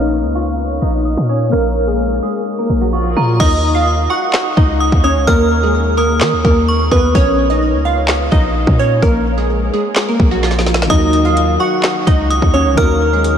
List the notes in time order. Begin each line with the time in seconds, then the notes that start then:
Already playing: A#1 A#3 A#4 C#5 F5 F6
0.00 D#4 D#5
0.24 C#2
0.35 F4 F5 C#6
0.82 A#1 D#4 D#5
1.05 D#6
1.17 A#2
1.29 C#4 C#5 D#6
1.49 A#1 A#3 A#4 F6
1.53 A#3 C#5 F5
1.87 G#3 G#4
2.23 G#3 G#4 D#6
2.59 A#3 A#4
2.70 A#1
2.81 F#3 F#4
2.93 F3 F4 C#6
3.17 A#2 A#5
3.40 D#2 D#4 D#5 D#6, kick, crash
3.75 F4 F5
4.10 F#4 F#5 C#6
4.33 snare, clap
4.57 C#2 D#4 D#5, kick
4.80 D#6
4.92 D#2, kick
5.04 C#4 C#5 D#6
5.16 C#2
5.27 D#2 A#3 A#4 F6, kick
5.63 G#3 G#4
5.97 A#3 A#4 D#6
6.21 D#3, snare, clap
6.33 D#2
6.45 D#2 A#3 A#4, kick
6.69 C#6
6.91 D#2 B3 B4 D#6, kick
7.15 A#1 C#4 C#5, kick
7.50 D#4 D#5
7.74 C#2
7.85 F4 F5
8.08 snare, clap
8.32 A#1 D#4 D#5, kick
8.67 A#2, kick
8.79 C#4 C#5
9.02 A#1 A#3 A#4, kick
9.38 G#3 G#4
9.73 G#3 G#4
9.96 snare, clap
10.09 A#3 A#4
10.20 A#1, kick
10.31 F#3 F#4
10.43 F3 F4, snare
10.51 snare
10.59 snare
10.66 snare
10.74 snare
10.82 D#3, snare
10.89 D#2 F#3 D#4 D#5 D#6, kick, closed hi-hat
10.94 A#4
11.13 closed hi-hat
11.25 F4 F5
11.37 closed hi-hat
11.60 F#4 F#5 C#6
11.83 snare, clap, closed hi-hat
12.07 C#2 D#4 D#5, kick, closed hi-hat
12.30 D#6, closed hi-hat
12.42 D#2, kick
12.54 C#4 C#5 D#6
12.66 C#2
12.74 D#2 D#3 D#4 A#4 F6, kick, closed hi-hat
12.78 A#3 F#4 A#4
13.13 G#3 G#4
13.24 closed hi-hat